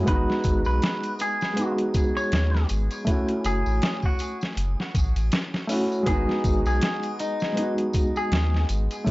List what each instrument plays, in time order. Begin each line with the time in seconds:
0.03 felt piano G#3 B3
0.07 sub bass G#1, felt piano D#4, clean electric guitar B4, kick, closed hi-hat, tambourine
0.12 felt piano F#4
0.30 snare
0.44 sub bass G#1, kick, closed hi-hat, tambourine
0.65 sub bass B1, clean electric guitar B4, tambourine, triangle
0.82 snare, closed hi-hat, tambourine
1.03 closed hi-hat, triangle
1.19 clean electric guitar G#4, closed hi-hat, tambourine
1.41 snare, tambourine
1.54 felt piano G#3 B3, closed hi-hat, tambourine
1.59 felt piano D#4 F#4
1.78 closed hi-hat
1.94 kick, closed hi-hat, tambourine
2.17 clean electric guitar C#5, tambourine
2.32 sub bass D#2, snare, closed hi-hat, tambourine
2.54 snare
2.69 sub bass G#1, closed hi-hat, tambourine
2.91 closed hi-hat, tambourine, triangle
3.05 felt piano A3 C#4 E4, kick, closed hi-hat, tambourine
3.09 felt piano F#4
3.28 closed hi-hat
3.44 sub bass F#1, clean electric guitar G#4, closed hi-hat, tambourine
3.66 sub bass A1, tambourine, triangle
3.82 snare, closed hi-hat, tambourine
4.03 clean electric guitar F#4, kick, triangle
4.19 closed hi-hat, tambourine
4.41 snare, tambourine
4.57 sub bass F#1, closed hi-hat, tambourine
4.80 snare
4.95 sub bass A1, kick, closed hi-hat, tambourine
5.15 sub bass A1, closed hi-hat, tambourine, triangle
5.32 snare, closed hi-hat, tambourine
5.54 snare
5.67 felt piano A3 C#4 E4, open hi-hat, tambourine
5.72 felt piano F#4
5.92 tambourine
6.03 felt piano G#3 B3, kick, closed hi-hat, tambourine
6.07 sub bass G#1, felt piano D#4, clean electric guitar G#4
6.12 felt piano F#4
6.29 snare
6.44 sub bass G#1, kick, closed hi-hat, tambourine
6.65 sub bass B1, clean electric guitar G#4, tambourine, triangle
6.81 snare, closed hi-hat, tambourine
7.03 closed hi-hat, triangle
7.19 clean electric guitar D#4, closed hi-hat, tambourine
7.40 snare, tambourine
7.53 felt piano G#3 B3
7.57 felt piano D#4, closed hi-hat, tambourine
7.61 felt piano F#4
7.78 closed hi-hat
7.93 kick, closed hi-hat, tambourine
8.16 clean electric guitar G#4, tambourine
8.32 sub bass D#2, snare, closed hi-hat, tambourine
8.54 snare
8.69 sub bass G#1, closed hi-hat, tambourine
8.91 closed hi-hat, tambourine, triangle
9.04 felt piano A3 C#4 E4, kick, closed hi-hat, tambourine